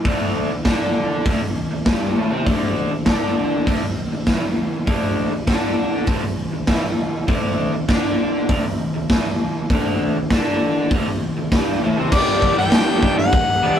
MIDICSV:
0, 0, Header, 1, 5, 480
1, 0, Start_track
1, 0, Tempo, 603015
1, 41, Time_signature, 4, 2, 24, 8
1, 10981, End_track
2, 0, Start_track
2, 0, Title_t, "Harmonica"
2, 0, Program_c, 0, 22
2, 9650, Note_on_c, 0, 74, 105
2, 9982, Note_off_c, 0, 74, 0
2, 10015, Note_on_c, 0, 79, 106
2, 10457, Note_off_c, 0, 79, 0
2, 10497, Note_on_c, 0, 78, 100
2, 10978, Note_off_c, 0, 78, 0
2, 10981, End_track
3, 0, Start_track
3, 0, Title_t, "Overdriven electric guitar"
3, 0, Program_c, 1, 29
3, 51, Note_on_c, 1, 38, 87
3, 60, Note_on_c, 1, 50, 99
3, 399, Note_off_c, 1, 38, 0
3, 403, Note_off_c, 1, 50, 0
3, 409, Note_on_c, 1, 38, 71
3, 516, Note_on_c, 1, 50, 90
3, 525, Note_off_c, 1, 38, 0
3, 526, Note_on_c, 1, 62, 92
3, 991, Note_off_c, 1, 50, 0
3, 996, Note_off_c, 1, 62, 0
3, 999, Note_on_c, 1, 38, 89
3, 1009, Note_on_c, 1, 50, 98
3, 1112, Note_off_c, 1, 38, 0
3, 1117, Note_off_c, 1, 50, 0
3, 1122, Note_on_c, 1, 38, 73
3, 1313, Note_off_c, 1, 38, 0
3, 1367, Note_on_c, 1, 38, 65
3, 1472, Note_off_c, 1, 38, 0
3, 1475, Note_on_c, 1, 43, 99
3, 1483, Note_on_c, 1, 55, 88
3, 1710, Note_off_c, 1, 43, 0
3, 1714, Note_off_c, 1, 55, 0
3, 1719, Note_on_c, 1, 45, 90
3, 1729, Note_on_c, 1, 57, 104
3, 1830, Note_off_c, 1, 45, 0
3, 1833, Note_on_c, 1, 48, 80
3, 1837, Note_off_c, 1, 57, 0
3, 1846, Note_on_c, 1, 60, 101
3, 1949, Note_off_c, 1, 48, 0
3, 1956, Note_off_c, 1, 60, 0
3, 1958, Note_on_c, 1, 38, 81
3, 1964, Note_on_c, 1, 50, 96
3, 2311, Note_off_c, 1, 38, 0
3, 2314, Note_off_c, 1, 50, 0
3, 2321, Note_on_c, 1, 38, 73
3, 2434, Note_on_c, 1, 50, 85
3, 2440, Note_off_c, 1, 38, 0
3, 2446, Note_on_c, 1, 62, 101
3, 2909, Note_off_c, 1, 50, 0
3, 2915, Note_off_c, 1, 62, 0
3, 2917, Note_on_c, 1, 38, 93
3, 2926, Note_on_c, 1, 50, 112
3, 3031, Note_off_c, 1, 38, 0
3, 3035, Note_off_c, 1, 50, 0
3, 3047, Note_on_c, 1, 38, 69
3, 3235, Note_off_c, 1, 38, 0
3, 3284, Note_on_c, 1, 38, 68
3, 3399, Note_off_c, 1, 38, 0
3, 3402, Note_on_c, 1, 40, 88
3, 3412, Note_on_c, 1, 52, 90
3, 3513, Note_off_c, 1, 40, 0
3, 3517, Note_on_c, 1, 38, 73
3, 3518, Note_off_c, 1, 52, 0
3, 3710, Note_off_c, 1, 38, 0
3, 3873, Note_on_c, 1, 38, 82
3, 3879, Note_on_c, 1, 50, 96
3, 4226, Note_off_c, 1, 38, 0
3, 4232, Note_off_c, 1, 50, 0
3, 4236, Note_on_c, 1, 38, 71
3, 4356, Note_on_c, 1, 50, 89
3, 4357, Note_off_c, 1, 38, 0
3, 4362, Note_on_c, 1, 62, 98
3, 4825, Note_off_c, 1, 50, 0
3, 4827, Note_on_c, 1, 38, 92
3, 4834, Note_off_c, 1, 62, 0
3, 4834, Note_on_c, 1, 50, 106
3, 4946, Note_off_c, 1, 38, 0
3, 4950, Note_off_c, 1, 50, 0
3, 4965, Note_on_c, 1, 38, 71
3, 5154, Note_off_c, 1, 38, 0
3, 5203, Note_on_c, 1, 38, 59
3, 5317, Note_off_c, 1, 38, 0
3, 5320, Note_on_c, 1, 40, 97
3, 5333, Note_on_c, 1, 52, 104
3, 5433, Note_off_c, 1, 40, 0
3, 5440, Note_off_c, 1, 52, 0
3, 5441, Note_on_c, 1, 38, 71
3, 5633, Note_off_c, 1, 38, 0
3, 5792, Note_on_c, 1, 38, 85
3, 5799, Note_on_c, 1, 50, 99
3, 6146, Note_off_c, 1, 38, 0
3, 6153, Note_off_c, 1, 50, 0
3, 6156, Note_on_c, 1, 38, 78
3, 6279, Note_off_c, 1, 38, 0
3, 6281, Note_on_c, 1, 50, 88
3, 6289, Note_on_c, 1, 62, 98
3, 6755, Note_off_c, 1, 50, 0
3, 6757, Note_on_c, 1, 38, 91
3, 6759, Note_off_c, 1, 62, 0
3, 6771, Note_on_c, 1, 50, 107
3, 6873, Note_off_c, 1, 38, 0
3, 6880, Note_off_c, 1, 50, 0
3, 6886, Note_on_c, 1, 38, 69
3, 7077, Note_off_c, 1, 38, 0
3, 7128, Note_on_c, 1, 38, 65
3, 7245, Note_off_c, 1, 38, 0
3, 7248, Note_on_c, 1, 40, 96
3, 7257, Note_on_c, 1, 52, 97
3, 7359, Note_off_c, 1, 40, 0
3, 7363, Note_off_c, 1, 52, 0
3, 7368, Note_on_c, 1, 38, 76
3, 7558, Note_off_c, 1, 38, 0
3, 7725, Note_on_c, 1, 38, 89
3, 7734, Note_on_c, 1, 50, 100
3, 8078, Note_off_c, 1, 38, 0
3, 8082, Note_off_c, 1, 50, 0
3, 8096, Note_on_c, 1, 38, 71
3, 8210, Note_off_c, 1, 38, 0
3, 8219, Note_on_c, 1, 50, 99
3, 8227, Note_on_c, 1, 62, 101
3, 8685, Note_off_c, 1, 50, 0
3, 8689, Note_off_c, 1, 62, 0
3, 8692, Note_on_c, 1, 38, 81
3, 8703, Note_on_c, 1, 50, 101
3, 8799, Note_off_c, 1, 38, 0
3, 8807, Note_off_c, 1, 50, 0
3, 8809, Note_on_c, 1, 38, 71
3, 8999, Note_off_c, 1, 38, 0
3, 9059, Note_on_c, 1, 38, 66
3, 9171, Note_off_c, 1, 38, 0
3, 9174, Note_on_c, 1, 43, 86
3, 9189, Note_on_c, 1, 55, 98
3, 9402, Note_off_c, 1, 43, 0
3, 9410, Note_off_c, 1, 55, 0
3, 9411, Note_on_c, 1, 45, 103
3, 9423, Note_on_c, 1, 57, 103
3, 9521, Note_off_c, 1, 45, 0
3, 9527, Note_off_c, 1, 57, 0
3, 9531, Note_on_c, 1, 48, 81
3, 9540, Note_on_c, 1, 60, 90
3, 9638, Note_off_c, 1, 48, 0
3, 9641, Note_on_c, 1, 43, 92
3, 9645, Note_off_c, 1, 60, 0
3, 9650, Note_on_c, 1, 50, 95
3, 9656, Note_on_c, 1, 55, 105
3, 9658, Note_on_c, 1, 59, 90
3, 9665, Note_on_c, 1, 62, 89
3, 9670, Note_on_c, 1, 67, 97
3, 9996, Note_off_c, 1, 67, 0
3, 10005, Note_on_c, 1, 67, 75
3, 10012, Note_off_c, 1, 62, 0
3, 10022, Note_on_c, 1, 62, 72
3, 10023, Note_off_c, 1, 59, 0
3, 10030, Note_off_c, 1, 55, 0
3, 10033, Note_on_c, 1, 59, 70
3, 10040, Note_on_c, 1, 55, 72
3, 10115, Note_off_c, 1, 43, 0
3, 10123, Note_off_c, 1, 50, 0
3, 10125, Note_on_c, 1, 43, 96
3, 10128, Note_off_c, 1, 55, 0
3, 10133, Note_on_c, 1, 50, 103
3, 10137, Note_off_c, 1, 59, 0
3, 10138, Note_on_c, 1, 55, 103
3, 10141, Note_off_c, 1, 62, 0
3, 10147, Note_on_c, 1, 59, 101
3, 10149, Note_off_c, 1, 67, 0
3, 10150, Note_on_c, 1, 62, 96
3, 10158, Note_on_c, 1, 67, 99
3, 10352, Note_off_c, 1, 55, 0
3, 10361, Note_on_c, 1, 55, 80
3, 10366, Note_off_c, 1, 59, 0
3, 10375, Note_off_c, 1, 62, 0
3, 10376, Note_on_c, 1, 59, 96
3, 10384, Note_on_c, 1, 62, 85
3, 10385, Note_off_c, 1, 67, 0
3, 10395, Note_on_c, 1, 67, 93
3, 10484, Note_off_c, 1, 62, 0
3, 10488, Note_off_c, 1, 67, 0
3, 10493, Note_off_c, 1, 55, 0
3, 10494, Note_off_c, 1, 59, 0
3, 10604, Note_off_c, 1, 43, 0
3, 10608, Note_off_c, 1, 50, 0
3, 10849, Note_on_c, 1, 55, 70
3, 10863, Note_on_c, 1, 59, 81
3, 10877, Note_on_c, 1, 62, 78
3, 10882, Note_on_c, 1, 67, 85
3, 10969, Note_off_c, 1, 59, 0
3, 10969, Note_off_c, 1, 62, 0
3, 10969, Note_off_c, 1, 67, 0
3, 10973, Note_off_c, 1, 55, 0
3, 10981, End_track
4, 0, Start_track
4, 0, Title_t, "Muted overdriven electric guitar strokes"
4, 10494, Note_on_c, 9, 29, 49
4, 10574, Note_off_c, 9, 29, 0
4, 10981, End_track
5, 0, Start_track
5, 0, Title_t, "Drums"
5, 40, Note_on_c, 9, 36, 107
5, 41, Note_on_c, 9, 46, 53
5, 120, Note_off_c, 9, 36, 0
5, 120, Note_off_c, 9, 46, 0
5, 517, Note_on_c, 9, 38, 106
5, 517, Note_on_c, 9, 46, 53
5, 521, Note_on_c, 9, 36, 104
5, 596, Note_off_c, 9, 46, 0
5, 597, Note_off_c, 9, 38, 0
5, 601, Note_off_c, 9, 36, 0
5, 998, Note_on_c, 9, 46, 64
5, 1001, Note_on_c, 9, 36, 117
5, 1078, Note_off_c, 9, 46, 0
5, 1081, Note_off_c, 9, 36, 0
5, 1479, Note_on_c, 9, 46, 52
5, 1480, Note_on_c, 9, 38, 106
5, 1482, Note_on_c, 9, 36, 105
5, 1559, Note_off_c, 9, 46, 0
5, 1560, Note_off_c, 9, 38, 0
5, 1561, Note_off_c, 9, 36, 0
5, 1962, Note_on_c, 9, 36, 102
5, 1963, Note_on_c, 9, 46, 53
5, 2042, Note_off_c, 9, 36, 0
5, 2042, Note_off_c, 9, 46, 0
5, 2435, Note_on_c, 9, 46, 54
5, 2436, Note_on_c, 9, 38, 108
5, 2441, Note_on_c, 9, 36, 96
5, 2515, Note_off_c, 9, 38, 0
5, 2515, Note_off_c, 9, 46, 0
5, 2520, Note_off_c, 9, 36, 0
5, 2919, Note_on_c, 9, 46, 59
5, 2921, Note_on_c, 9, 36, 104
5, 2999, Note_off_c, 9, 46, 0
5, 3001, Note_off_c, 9, 36, 0
5, 3396, Note_on_c, 9, 46, 57
5, 3397, Note_on_c, 9, 38, 111
5, 3399, Note_on_c, 9, 36, 101
5, 3476, Note_off_c, 9, 46, 0
5, 3477, Note_off_c, 9, 38, 0
5, 3479, Note_off_c, 9, 36, 0
5, 3877, Note_on_c, 9, 46, 57
5, 3879, Note_on_c, 9, 36, 107
5, 3957, Note_off_c, 9, 46, 0
5, 3959, Note_off_c, 9, 36, 0
5, 4357, Note_on_c, 9, 46, 57
5, 4358, Note_on_c, 9, 36, 106
5, 4358, Note_on_c, 9, 38, 102
5, 4437, Note_off_c, 9, 36, 0
5, 4437, Note_off_c, 9, 46, 0
5, 4438, Note_off_c, 9, 38, 0
5, 4829, Note_on_c, 9, 46, 58
5, 4835, Note_on_c, 9, 36, 110
5, 4909, Note_off_c, 9, 46, 0
5, 4914, Note_off_c, 9, 36, 0
5, 5311, Note_on_c, 9, 46, 53
5, 5312, Note_on_c, 9, 38, 100
5, 5316, Note_on_c, 9, 36, 108
5, 5391, Note_off_c, 9, 46, 0
5, 5392, Note_off_c, 9, 38, 0
5, 5396, Note_off_c, 9, 36, 0
5, 5794, Note_on_c, 9, 46, 54
5, 5796, Note_on_c, 9, 36, 112
5, 5874, Note_off_c, 9, 46, 0
5, 5876, Note_off_c, 9, 36, 0
5, 6277, Note_on_c, 9, 46, 50
5, 6278, Note_on_c, 9, 36, 103
5, 6278, Note_on_c, 9, 38, 98
5, 6357, Note_off_c, 9, 36, 0
5, 6357, Note_off_c, 9, 38, 0
5, 6357, Note_off_c, 9, 46, 0
5, 6756, Note_on_c, 9, 46, 59
5, 6759, Note_on_c, 9, 36, 119
5, 6836, Note_off_c, 9, 46, 0
5, 6839, Note_off_c, 9, 36, 0
5, 7241, Note_on_c, 9, 36, 110
5, 7242, Note_on_c, 9, 46, 55
5, 7243, Note_on_c, 9, 38, 118
5, 7321, Note_off_c, 9, 36, 0
5, 7322, Note_off_c, 9, 46, 0
5, 7323, Note_off_c, 9, 38, 0
5, 7721, Note_on_c, 9, 46, 54
5, 7722, Note_on_c, 9, 36, 110
5, 7800, Note_off_c, 9, 46, 0
5, 7801, Note_off_c, 9, 36, 0
5, 8202, Note_on_c, 9, 38, 108
5, 8202, Note_on_c, 9, 46, 59
5, 8203, Note_on_c, 9, 36, 104
5, 8281, Note_off_c, 9, 46, 0
5, 8282, Note_off_c, 9, 38, 0
5, 8283, Note_off_c, 9, 36, 0
5, 8684, Note_on_c, 9, 36, 114
5, 8686, Note_on_c, 9, 46, 57
5, 8764, Note_off_c, 9, 36, 0
5, 8766, Note_off_c, 9, 46, 0
5, 9168, Note_on_c, 9, 36, 118
5, 9170, Note_on_c, 9, 46, 60
5, 9171, Note_on_c, 9, 38, 107
5, 9248, Note_off_c, 9, 36, 0
5, 9250, Note_off_c, 9, 38, 0
5, 9250, Note_off_c, 9, 46, 0
5, 9648, Note_on_c, 9, 36, 114
5, 9649, Note_on_c, 9, 49, 122
5, 9649, Note_on_c, 9, 57, 63
5, 9728, Note_off_c, 9, 36, 0
5, 9729, Note_off_c, 9, 49, 0
5, 9729, Note_off_c, 9, 57, 0
5, 9888, Note_on_c, 9, 36, 86
5, 9968, Note_off_c, 9, 36, 0
5, 10124, Note_on_c, 9, 38, 113
5, 10124, Note_on_c, 9, 57, 60
5, 10203, Note_off_c, 9, 57, 0
5, 10204, Note_off_c, 9, 38, 0
5, 10369, Note_on_c, 9, 36, 85
5, 10448, Note_off_c, 9, 36, 0
5, 10607, Note_on_c, 9, 57, 62
5, 10609, Note_on_c, 9, 36, 119
5, 10686, Note_off_c, 9, 57, 0
5, 10689, Note_off_c, 9, 36, 0
5, 10981, End_track
0, 0, End_of_file